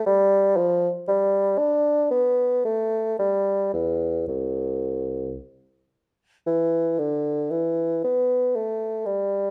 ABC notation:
X:1
M:3/4
L:1/8
Q:1/4=57
K:Am
V:1 name="Bassoon" clef=bass
G, F, G, D B, A, | G, E,, C,,2 z2 | E, D, E, B, A, G, |]